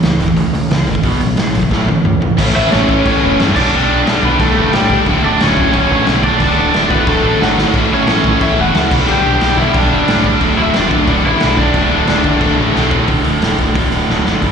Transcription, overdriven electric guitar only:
2.56 2.71 E4 medium
2.56 2.73 E5 medium
2.70 3.03 C#4 medium
2.70 3.06 C#5 medium
3.07 3.38 C#4 medium
3.07 3.38 C#5 loud
3.56 4.20 D4 medium
3.56 4.19 D5 medium
4.25 4.40 B3 medium
4.25 4.40 B4 medium
4.39 4.71 A3 medium
4.39 4.73 A4 loud
4.74 4.97 G3 medium
4.74 4.97 G4 medium
5.25 5.40 D4 medium
5.25 5.42 D5 medium
5.42 5.72 C#4 medium
5.42 5.72 C#5 medium
5.73 6.04 C#4 medium
5.73 6.05 C#5 loud
6.24 6.87 D4 medium
6.24 6.91 D5 medium
6.91 7.06 B3 medium
6.91 7.08 B4 medium
7.08 7.39 A3 medium
7.08 7.40 A4 loud
7.41 7.65 F#3 medium
7.41 7.65 F#4 medium
7.93 8.39 C#4 medium
7.93 8.43 C#5 loud
8.42 8.58 E4 medium
8.42 8.59 E5 loud
8.60 8.90 F#4 medium
8.60 8.91 F#5 loud
9.08 9.31 G4 medium
9.08 9.33 G5 loud
9.32 9.56 G4 medium
9.32 9.57 G5 loud
9.58 9.73 E4 medium
9.58 9.78 E5 loud
9.74 10.21 D4 medium
9.78 10.27 D5 loud
10.59 10.74 E4 medium
10.59 10.78 E5 loud
10.76 11.07 D4 medium
10.76 11.09 D5 loud
11.09 11.14 D4 medium
11.09 11.15 D5 loud
11.26 11.57 E4 loud
11.26 11.60 E5 loud
11.57 12.70 D4 medium
11.57 12.71 D5 medium

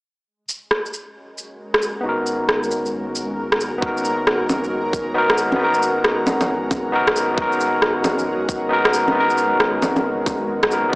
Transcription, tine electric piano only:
2.01 3.77 B3 medium
2.01 3.79 D#4 medium
2.06 3.80 F#4 medium
2.06 3.81 A#4 medium
3.78 5.12 B3 medium
3.78 5.13 D#4 medium
3.83 5.14 F#4 medium
3.83 5.16 A#4 medium
5.14 5.55 B3 loud
5.14 5.58 D#4 medium
5.14 5.59 F#4 medium
5.14 5.59 A#4 loud
5.56 6.89 B3 medium
5.56 6.91 D#4 medium
5.61 6.92 F#4 medium
5.61 6.93 A#4 medium
6.92 7.33 B3 medium
6.92 7.35 D#4 medium
6.92 7.37 F#4 medium
6.92 7.37 A#4 loud
7.34 8.67 B3 medium
7.34 8.69 D#4 medium
7.39 8.70 F#4 medium
7.39 8.71 A#4 medium
8.69 9.10 B3 loud
8.69 9.13 D#4 medium
8.69 9.14 F#4 medium
8.73 9.15 A#4 loud
9.12 10.45 B3 medium
9.12 10.47 D#4 medium
9.17 10.48 F#4 medium
9.17 10.49 A#4 loud
10.69 10.88 B3 medium
10.69 10.90 D#4 medium
10.69 10.92 F#4 medium
10.69 10.92 A#4 medium
10.89 10.96 B3 medium
10.89 10.96 D#4 medium

